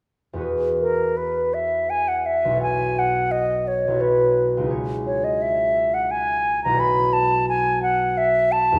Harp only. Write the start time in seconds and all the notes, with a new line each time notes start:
0.33 E2 E4 F#4
0.38 G#4 B4
2.45 B1 E4
2.51 F#4 A4
2.57 C#5
3.88 B1 E4
3.94 F#4 A4
4.00 C#5
4.57 C#2 D#4
4.63 E4 G#4
4.70 C#5
6.65 B1 E4
6.71 F#4 A4
6.77 C#5
8.72 E2 D#4